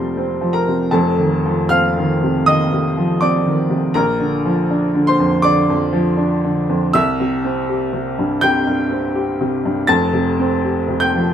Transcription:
0.00 0.68 C3 medium
0.00 0.41 F3 medium
0.00 0.97 G3 medium
0.00 0.17 C4 medium
0.00 0.54 A#4 medium
0.00 0.14 C5 medium
0.00 0.53 A#5 medium
0.00 0.17 C6 loud
0.17 0.58 C4 medium
0.41 0.83 F3 medium
0.53 0.90 A#4 medium
0.53 0.93 A#5 medium
0.68 0.94 C3 medium
0.91 2.41 F1 medium
0.91 2.42 F2 medium
0.91 1.66 A4 medium
0.91 1.70 A5 medium
1.18 1.60 D#3 medium
1.46 1.86 F3 medium
1.69 2.11 C4 medium
1.69 2.42 F5 medium
1.69 2.45 F6 loud
1.97 2.37 D#3 medium
2.23 2.62 C3 medium
2.46 2.87 D#3 medium
2.46 3.17 D#5 medium
2.46 3.21 D#6 loud
2.72 3.11 C3 medium
2.97 3.36 F3 medium
3.21 3.61 C4 medium
3.21 3.92 D5 medium
3.21 3.96 D6 loud
3.46 3.86 D#3 medium
3.70 3.95 C3 medium
3.94 5.40 A#1 medium
3.94 5.04 A#4 medium
3.94 5.07 A#5 loud
4.20 4.60 D3 medium
4.45 4.85 F3 medium
4.71 5.10 D4 medium
4.95 5.34 D3 medium
5.07 5.42 C5 medium
5.07 5.44 C6 loud
5.20 5.59 F2 medium
5.42 5.84 D3 medium
5.42 6.14 D5 medium
5.42 6.17 D6 loud
5.70 6.09 F2 medium
5.93 6.32 F3 medium
6.17 6.57 D4 medium
6.44 6.83 D3 medium
6.69 6.94 F2 medium
6.93 8.38 C2 medium
6.93 8.38 E5 medium
6.93 8.42 E6 loud
7.20 7.59 C3 medium
7.44 7.83 C4 medium
7.69 8.08 G4 medium
7.93 8.32 C3 medium
8.19 8.57 G2 medium
8.41 8.81 C3 medium
8.41 9.86 G5 medium
8.41 9.89 G6 loud
8.67 9.06 G2 medium
8.91 9.30 C4 medium
9.15 9.55 G4 medium
9.41 9.80 C3 medium
9.65 9.90 G2 medium
9.87 11.34 F1 medium
9.87 11.34 F2 medium
9.87 10.98 A5 medium
9.87 11.01 A6 loud
10.13 10.54 C3 medium
10.39 10.79 C4 medium
10.65 11.05 G4 medium
10.88 11.29 C3 medium
11.00 11.34 G5 medium
11.00 11.34 G6 loud
11.15 11.34 F3 medium

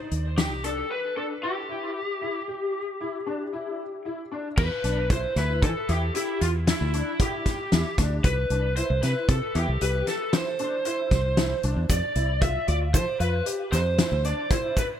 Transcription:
0.00 0.13 D#4 medium
0.11 0.51 D#2 medium
0.11 closed hi-hat soft
0.38 0.52 D#4 medium
0.38 0.65 G4 medium
0.38 snare medium
0.38 closed hi-hat medium
0.51 0.82 C2 medium
0.64 0.78 D4 medium
0.64 0.91 A4 medium
0.64 closed hi-hat medium
0.91 1.16 B4 loud
1.16 1.30 D4 medium
1.16 1.24 A4 medium
1.43 1.57 E4 medium
1.43 4.02 G4 medium
1.69 1.97 E4 medium
2.21 2.35 E4 medium
2.48 2.76 G4 medium
3.01 3.14 E4 medium
3.26 3.40 D4 medium
3.53 3.81 E4 medium
4.05 4.19 E4 medium
4.31 4.45 D4 medium
4.57 4.68 E2 medium
4.57 5.11 B4 loud
4.57 kick loud
4.57 crash medium
4.84 5.25 B1 medium
4.84 4.98 D4 medium
4.84 closed hi-hat medium
5.10 5.24 E4 medium
5.10 5.38 C5 medium
5.10 kick loud
5.10 closed hi-hat medium
5.36 5.64 D2 medium
5.36 5.64 E4 medium
5.36 5.63 B4 medium
5.36 snare soft
5.36 closed hi-hat soft
5.62 5.73 E3 medium
5.62 5.90 A4 medium
5.62 kick medium
5.62 closed hi-hat medium
5.89 6.09 E2 medium
5.89 6.03 E4 medium
5.89 6.15 G4 medium
5.89 closed hi-hat medium
6.15 6.42 E4 medium
6.15 6.43 G4 medium
6.15 closed hi-hat medium
6.41 6.72 E2 medium
6.41 6.49 F4 medium
6.41 closed hi-hat medium
6.67 6.82 E4 medium
6.67 7.21 E4 medium
6.67 snare loud
6.67 closed hi-hat medium
6.81 7.01 D2 medium
6.94 7.08 D4 medium
6.94 closed hi-hat medium
7.20 7.48 E4 medium
7.20 7.95 G4 medium
7.20 kick loud
7.20 closed hi-hat medium
7.46 kick medium
7.46 snare soft
7.46 closed hi-hat medium
7.72 7.83 E2 medium
7.72 7.86 E4 medium
7.72 snare medium
7.72 closed hi-hat medium
7.98 8.19 D2 medium
7.98 8.13 D4 medium
7.98 kick medium
7.98 snare soft
7.98 closed hi-hat medium
8.24 8.45 C2 medium
8.24 8.73 B4 loud
8.24 kick medium
8.24 closed hi-hat medium
8.50 8.81 C2 medium
8.50 8.65 D4 medium
8.50 closed hi-hat medium
8.76 8.91 E4 medium
8.76 9.02 C5 medium
8.76 closed hi-hat medium
8.90 9.00 C2 medium
9.03 9.13 C3 medium
9.03 9.30 E4 medium
9.03 9.29 B4 medium
9.03 snare soft
9.03 closed hi-hat medium
9.28 9.39 C3 medium
9.28 9.56 A4 medium
9.28 kick loud
9.28 closed hi-hat medium
9.54 9.65 E2 medium
9.54 9.69 E4 medium
9.54 9.80 G4 medium
9.54 closed hi-hat medium
9.68 9.78 C2 medium
9.81 10.02 C2 medium
9.81 10.08 G4 medium
9.81 10.07 B4 medium
9.81 closed hi-hat medium
10.07 10.34 A4 medium
10.07 snare soft
10.07 closed hi-hat medium
10.33 10.47 E4 medium
10.33 10.85 C5 medium
10.33 snare loud
10.33 closed hi-hat medium
10.59 10.73 D4 medium
10.59 closed hi-hat medium
10.85 11.13 E4 medium
10.85 11.60 C5 medium
10.85 closed hi-hat medium
11.11 11.52 C2 medium
11.11 kick medium
11.11 snare soft
11.11 closed hi-hat medium
11.37 11.51 E4 medium
11.37 snare loud
11.37 closed hi-hat medium
11.63 11.74 C2 medium
11.63 11.78 D4 medium
11.63 closed hi-hat medium
11.76 11.87 E2 medium
11.89 12.00 F2 medium
11.89 12.39 D5 loud
11.89 kick medium
11.89 closed hi-hat medium
11.89 shaker soft
12.15 12.57 C2 medium
12.15 12.29 E4 medium
12.15 closed hi-hat medium
12.41 12.55 F4 medium
12.41 12.66 E5 medium
12.41 kick loud
12.41 closed hi-hat medium
12.67 12.96 D2 medium
12.67 12.95 F4 medium
12.67 12.76 D5 medium
12.67 closed hi-hat medium
12.94 13.04 F3 medium
12.94 13.20 C5 medium
12.94 kick medium
12.94 closed hi-hat medium
12.94 shaker medium
13.20 13.41 F2 medium
13.20 13.34 F4 medium
13.20 13.45 B4 medium
13.20 closed hi-hat medium
13.20 shaker soft
13.46 13.73 G4 medium
13.46 closed hi-hat medium
13.72 14.03 F2 medium
13.72 14.26 C5 medium
13.72 snare soft
13.72 closed hi-hat medium
13.72 shaker soft
13.98 14.12 E4 medium
13.98 snare loud
13.98 closed hi-hat medium
14.12 14.32 D2 medium
14.24 14.38 D4 medium
14.24 14.52 D5 medium
14.24 closed hi-hat medium
14.51 14.79 E4 medium
14.51 14.78 C5 medium
14.51 kick loud
14.51 closed hi-hat medium
14.51 shaker soft
14.77 14.85 B4 medium
14.77 kick medium
14.77 closed hi-hat medium
14.77 shaker soft

